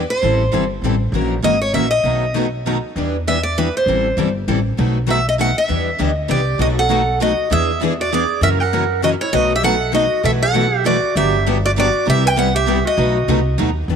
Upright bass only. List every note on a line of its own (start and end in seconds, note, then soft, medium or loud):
0.23 0.47 A1 medium
0.53 0.79 G1 medium
0.82 1.08 A1 medium
1.12 1.37 A#1 medium
1.43 1.69 G#1 medium
1.74 2.00 A#1 medium
2.04 2.77 B1 medium
2.96 3.69 E2 medium
3.86 4.11 A1 medium
4.17 4.43 G1 medium
4.48 4.74 A1 medium
4.79 5.51 B1 medium
5.69 5.94 E2 medium
5.99 6.25 D2 medium
6.29 6.55 C2 medium
6.59 7.32 B1 medium
7.51 8.24 E2 medium
8.41 9.15 F#2 medium
9.33 10.06 B1 medium
10.24 10.97 B1 medium
11.15 11.88 G1 medium
12.07 12.80 C2 medium
12.98 13.22 B1 medium
13.28 13.54 C2 medium
13.59 13.85 D#2 medium
13.88 13.96 E2 medium